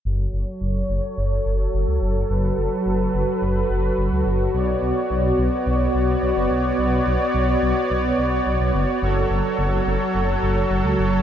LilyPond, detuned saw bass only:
\new Staff \with { instrumentName = "Detuned saw bass" } { \clef bass \time 4/4 \key fis \phrygian \tempo 4 = 107 fis,,8 fis,,16 r16 fis,,8 fis,,16 r16 fis,,8 fis,,8 fis,,16 cis,16 fis,,8 | fis,,8 fis,,16 r16 fis,,8 fis,,16 r16 fis,,8 fis,,8 fis,,16 cis,16 fis,,8 | b,,8 b,,16 r16 b,,8 b,,16 r16 b,,8 b,,8 b,,16 fis,,16 b,,8 | b,,8 b,,16 r16 b,,8 b,,16 r16 b,,8 b,,8 b,,16 b,,16 fis,,16 r16 |
fis,,8 fis,,16 r16 fis,,8 fis,,16 r16 fis,,8 fis,,8 fis,,16 cis,16 fis,,8 | }